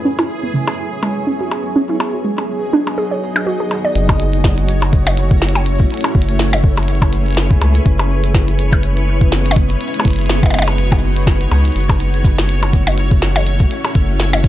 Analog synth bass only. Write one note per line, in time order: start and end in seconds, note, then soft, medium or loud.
3.95 5.86 F#1 loud
6.15 7.57 F#1 medium
7.61 7.80 C#2 medium
7.86 9.76 F#1 loud
10.05 10.78 F#1 medium
10.78 11.47 F#1 loud
11.51 11.70 C#2 medium
11.76 13.67 F#1 loud
13.95 14.48 F#1 medium